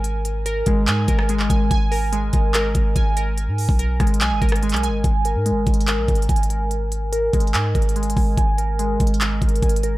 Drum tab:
HH |x-----x-----x-----x-----x-----x-----x-----x-----|x-----o-----x-----x-----x-----x-----x-----x-----|x-----o-----x-----x-x-x-x-----x-x-x-x-x-x-x-----|x-----x-----x-----x-x-x-x-----x-x-x-x-x-x-x-----|
CP |------------------------x--------------x--------|------------------------x-----------------------|------------------------x--------------x--------|------------------------x-----------------------|
SD |---------------------------------r--------------|------------------------------------------------|------------------r--------------r--------------|------------------------------------------------|
BD |------------------o-----------o-----------o-----|o-----------------o-----------o-----o-----------|---------o--------o-----------o-----------------|o-----------------o-----------o-----o-----------|

HH |x-----x-----x-----x-x-x-x-----x-x-x-x-x-x-o-----|x-----x-----x-----x-x-x-x-----x-x-x-x-x-x-x-----|
CP |------------------------x-----------------------|------------------------x-----------------------|
SD |------------------------------------------------|------------------------------------------------|
BD |------------------o-----------o-----------o-----|o-----------------o-----------o-----o-----------|